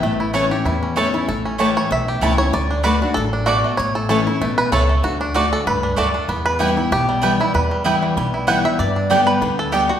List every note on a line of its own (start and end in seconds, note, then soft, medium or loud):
0.00 0.49 A1 medium
0.00 0.63 A2 loud
0.00 0.54 A3 medium
0.00 0.20 E4 medium
0.00 0.36 E5 loud
0.20 0.34 E4 medium
0.33 0.50 E3 medium
0.33 0.44 A3 medium
0.33 0.51 A3 medium
0.33 0.51 C#4 loud
0.33 0.44 E4 medium
0.33 0.50 E4 loud
0.33 0.63 C#5 medium
0.33 0.44 C#5 loud
0.33 0.44 A5 medium
0.51 0.66 C#4 soft
0.51 0.65 E4 medium
0.51 0.94 G4 medium
0.65 1.12 E2 medium
0.65 1.26 E2 medium
0.65 0.97 E4 medium
0.83 1.26 C#4 medium
0.96 1.13 E3 medium
0.96 1.06 A3 medium
0.96 1.13 A3 medium
0.96 1.14 C#4 medium
0.96 1.06 E4 loud
0.96 1.12 E4 loud
0.96 1.14 A4 medium
0.96 1.07 C#5 medium
0.96 1.07 A5 loud
1.14 1.29 C#4 soft
1.14 1.28 E4 medium
1.28 1.75 A1 loud
1.28 1.88 A2 loud
1.28 1.76 A4 medium
1.45 1.88 C#4 medium
1.58 1.89 E3 medium
1.58 1.69 A3 medium
1.58 1.90 A3 medium
1.58 1.90 C#4 medium
1.58 1.69 E4 medium
1.58 1.90 E4 medium
1.58 2.05 G4 medium
1.58 1.69 C#5 loud
1.58 1.70 A5 loud
1.77 1.90 C#5 loud
1.90 2.17 B1 medium
1.90 2.51 E2 medium
1.90 2.07 E5 loud
2.08 2.51 G4 medium
2.21 2.48 C#2 medium
2.21 2.38 E3 medium
2.21 2.32 A3 loud
2.21 2.39 A3 medium
2.21 2.39 C#4 medium
2.21 2.32 E4 loud
2.21 2.38 E4 medium
2.21 2.38 E4 loud
2.21 2.32 C#5 loud
2.21 2.32 A5 loud
2.38 2.54 C#4 medium
2.38 2.53 E4 medium
2.38 2.53 C#5 loud
2.53 3.00 D2 medium
2.53 2.84 D3 medium
2.53 2.83 D5 loud
2.71 3.01 D4 medium
2.83 3.01 D3 medium
2.83 2.94 A3 medium
2.83 3.01 A3 medium
2.83 3.02 D4 loud
2.83 2.94 F#4 loud
2.83 3.00 F#4 loud
2.83 3.02 B4 loud
2.83 2.94 D5 loud
2.83 2.95 A5 loud
3.01 3.32 D4 medium
3.01 3.16 D4 medium
3.01 3.15 F#4 medium
3.14 3.63 A1 medium
3.14 3.46 F#2 medium
3.14 3.46 A4 loud
3.33 3.76 D4 medium
3.46 3.78 B2 medium
3.46 3.56 A3 loud
3.46 3.76 F#4 medium
3.46 3.57 F#4 loud
3.46 3.57 D5 medium
3.46 3.57 A5 loud
3.64 4.41 A3 medium
3.77 4.26 A1 medium
3.77 4.39 A2 loud
3.77 3.95 C#5 medium
3.95 4.08 A4 medium
4.09 4.26 E3 medium
4.09 4.19 A3 medium
4.09 4.26 A3 loud
4.09 4.27 C#4 loud
4.09 4.20 E4 medium
4.09 4.25 E4 loud
4.09 4.25 A4 medium
4.09 4.20 C#5 loud
4.09 4.20 A5 loud
4.27 4.42 C#4 medium
4.27 4.41 E4 medium
4.27 4.57 E4 medium
4.41 4.68 B1 medium
4.41 4.71 B2 loud
4.41 4.86 A3 medium
4.58 4.72 B4 loud
4.72 4.99 C#2 medium
4.72 5.03 C#3 medium
4.72 4.82 A3 medium
4.72 4.82 E4 loud
4.72 5.04 A4 loud
4.72 4.82 C#5 loud
4.72 4.83 A5 loud
4.89 5.04 A3 medium
5.03 5.50 D2 loud
5.03 5.33 D3 loud
5.03 5.20 F#4 medium
5.21 5.35 D4 medium
5.34 5.65 D3 medium
5.34 5.44 A3 loud
5.34 5.65 A3 medium
5.34 5.65 D4 medium
5.34 5.45 F#4 medium
5.34 5.52 F#4 medium
5.34 5.66 F#4 medium
5.34 5.45 D5 loud
5.34 5.45 A5 loud
5.53 5.67 A4 loud
5.66 5.93 C#2 medium
5.66 5.96 G2 loud
5.66 5.96 B4 loud
5.83 6.13 D4 medium
5.96 6.24 D2 medium
5.96 6.28 F#2 medium
5.96 6.07 A3 loud
5.96 6.29 A3 medium
5.96 6.07 F#4 loud
5.96 6.07 D5 loud
5.96 6.07 A5 loud
6.14 6.29 D4 medium
6.28 6.76 E2 medium
6.28 6.89 E2 medium
6.28 7.23 B3 medium
6.46 6.77 B4 loud
6.59 6.76 E3 medium
6.59 6.76 G3 medium
6.59 6.69 B3 medium
6.59 6.77 B3 medium
6.59 6.69 E4 medium
6.59 6.76 E4 loud
6.59 6.92 G4 medium
6.59 6.70 B4 medium
6.59 6.70 G5 medium
6.77 6.92 B3 medium
6.77 6.91 E4 medium
6.77 6.92 E4 medium
6.91 7.38 B1 medium
6.91 7.51 B2 medium
6.91 7.40 G4 loud
7.09 7.71 G3 medium
7.22 7.39 E3 medium
7.22 7.39 G3 medium
7.22 7.32 B3 medium
7.22 8.63 B3 medium
7.22 7.40 B3 medium
7.22 7.32 E4 medium
7.22 7.38 E4 medium
7.22 7.32 B4 loud
7.22 7.33 G5 loud
7.40 7.54 B3 soft
7.40 7.53 E4 medium
7.40 7.54 E4 medium
7.54 8.01 E2 medium
7.54 8.14 E2 medium
7.54 7.86 B4 medium
7.71 8.17 G3 medium
7.84 8.15 E3 medium
7.84 8.15 G3 medium
7.84 7.95 B3 medium
7.84 8.16 B3 medium
7.84 7.95 E4 loud
7.84 8.30 E4 medium
7.84 8.16 E4 medium
7.84 7.95 B4 medium
7.84 7.95 G5 loud
8.02 8.45 E3 medium
8.16 8.63 B1 medium
8.16 8.77 B2 medium
8.16 9.26 G3 medium
8.34 8.47 E4 medium
8.47 8.64 E3 medium
8.47 8.64 G3 medium
8.47 8.57 B3 loud
8.47 8.65 B3 loud
8.47 8.57 E4 loud
8.47 8.64 E4 loud
8.47 8.58 B4 loud
8.47 8.64 F#5 loud
8.47 8.58 G5 loud
8.65 8.80 B3 medium
8.65 8.79 E4 medium
8.65 8.80 E5 loud
8.79 9.26 G2 medium
8.79 9.39 G2 loud
8.79 9.29 D5 loud
8.96 9.39 D4 medium
9.10 9.40 D3 loud
9.10 9.41 G3 loud
9.10 9.20 B3 medium
9.10 9.41 B3 loud
9.10 9.20 G4 medium
9.10 9.55 G4 medium
9.10 9.41 G4 loud
9.10 9.20 D5 loud
9.10 9.20 G5 loud
9.27 9.59 B4 loud
9.41 9.88 D2 medium
9.41 9.72 D3 medium
9.41 9.86 B3 medium
9.59 9.72 A4 medium
9.72 9.89 D3 medium
9.72 9.89 G3 medium
9.72 9.82 B3 medium
9.72 9.90 B3 medium
9.72 9.88 G4 medium
9.72 9.82 G4 medium
9.72 9.88 G4 medium
9.72 9.83 D5 loud
9.72 9.83 G5 loud
9.89 10.00 B3 medium
9.89 10.00 F#4 medium
9.89 10.00 G4 medium